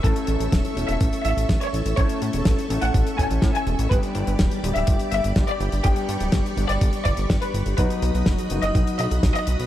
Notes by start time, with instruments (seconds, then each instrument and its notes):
Already playing: string machine E5 C#6 E6
0.04 analog synth bass A1, clean electric guitar A3 C#4 E4 A4, violin section A4, string machine A4, kick, closed hi-hat
0.16 closed hi-hat
0.27 analog synth bass A1, closed hi-hat
0.40 analog synth bass A1, closed hi-hat
0.52 analog synth bass E1, kick, snare, closed hi-hat
0.65 closed hi-hat
0.76 analog synth bass E1, clean electric guitar A3 C#4 E4 A4, closed hi-hat
0.89 analog synth bass E1, violin section E5, closed hi-hat
1.01 analog synth bass A1, kick, closed hi-hat
1.13 closed hi-hat
1.25 analog synth bass A1, violin section E5, closed hi-hat
1.37 analog synth bass A1, closed hi-hat
1.49 analog synth bass A1, kick, snare, closed hi-hat
1.61 violin section C#5, closed hi-hat
1.73 analog synth bass A1, closed hi-hat
1.86 analog synth bass A1, closed hi-hat
1.97 analog synth bass A1, clean electric guitar A3 C#4 E4 A4, violin section C#5, kick, closed hi-hat
2.09 closed hi-hat
2.22 analog synth bass A2, closed hi-hat
2.33 analog synth bass E1, closed hi-hat
2.45 analog synth bass A1, kick, snare, closed hi-hat
2.59 closed hi-hat
2.70 analog synth bass A1, clean electric guitar A3 C#4 E4 A4, closed hi-hat
2.82 analog synth bass A1, violin section F#5, closed hi-hat
2.94 analog synth bass A1, kick, closed hi-hat
3.07 closed hi-hat
3.18 analog synth bass A1, clean electric guitar A3 C#4 E4 A4, violin section G#5, kick, closed hi-hat
3.31 analog synth bass A1, closed hi-hat
3.42 analog synth bass A2, kick, snare, closed hi-hat
3.55 violin section G#5, closed hi-hat
3.67 analog synth bass E1, closed hi-hat
3.79 analog synth bass A1, closed hi-hat
3.91 analog synth bass G1, clean electric guitar G3 B3 D4 G4, string machine G4 D5 B5 D6, violin section B4, kick, closed hi-hat
4.03 closed hi-hat
4.15 analog synth bass G1, closed hi-hat
4.27 analog synth bass G1, closed hi-hat
4.39 analog synth bass D1, kick, snare, closed hi-hat
4.51 closed hi-hat
4.63 analog synth bass D1, clean electric guitar G3 B3 D4 G4, closed hi-hat
4.76 analog synth bass D1, violin section E5, closed hi-hat
4.87 analog synth bass G1, kick, closed hi-hat
4.99 closed hi-hat
5.12 analog synth bass G1, violin section E5, closed hi-hat
5.24 analog synth bass G1, closed hi-hat
5.36 analog synth bass G1, kick, snare, closed hi-hat
5.48 violin section D5, closed hi-hat
5.60 analog synth bass G1, closed hi-hat
5.72 analog synth bass G1, closed hi-hat
5.84 analog synth bass G1, clean electric guitar G3 B3 D4 G4, violin section G4, string machine C#6, kick, closed hi-hat
5.96 closed hi-hat
6.09 analog synth bass G2, closed hi-hat
6.20 analog synth bass D1, closed hi-hat
6.32 analog synth bass G1, kick, snare, closed hi-hat
6.46 closed hi-hat
6.57 analog synth bass G1, clean electric guitar G3 B3 D4 G4, closed hi-hat
6.69 analog synth bass G1, violin section D5, closed hi-hat
6.81 analog synth bass G1, kick, closed hi-hat
6.93 closed hi-hat
7.05 analog synth bass G1, violin section D5, kick, closed hi-hat
7.17 analog synth bass G1, closed hi-hat
7.30 analog synth bass G1, kick, snare, closed hi-hat
7.42 violin section B4, closed hi-hat
7.54 analog synth bass G1, closed hi-hat
7.66 analog synth bass G1, closed hi-hat
7.78 analog synth bass B1, clean electric guitar F#3 B3 D#4 F#4, string machine F#4 D#5 D#6, violin section B4, kick, closed hi-hat
7.90 closed hi-hat
8.02 analog synth bass B1, closed hi-hat
8.14 analog synth bass B1, closed hi-hat
8.26 analog synth bass F#1, kick, snare, closed hi-hat
8.38 closed hi-hat
8.50 analog synth bass F#1, clean electric guitar F#3 B3 D#4 F#4, closed hi-hat
8.62 analog synth bass F#1, violin section D#5, closed hi-hat
8.75 analog synth bass B1, kick, closed hi-hat
8.87 closed hi-hat
8.99 analog synth bass B1, violin section D#5, closed hi-hat
9.11 analog synth bass B1, closed hi-hat
9.23 analog synth bass B1, kick, snare, closed hi-hat
9.35 violin section D#5, closed hi-hat
9.47 analog synth bass B1, closed hi-hat
9.60 analog synth bass B1, closed hi-hat